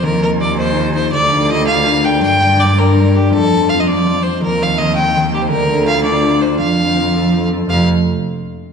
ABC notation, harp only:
X:1
M:6/8
L:1/8
Q:3/8=110
K:Fmix
V:1 name="Harp"
E, B, G E G E | D, B, F D B D | G, D G, D G, D | F, C F, C F, C |
E, B, E, B, E, B, | D, B, F D F D | F, C c A c A | [F,,C,A,FGc] z4 z |]